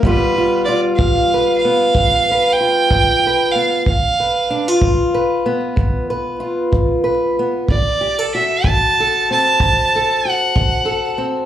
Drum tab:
BD |o--o--o--o--|o--o--o--o--|o--o--o--o--|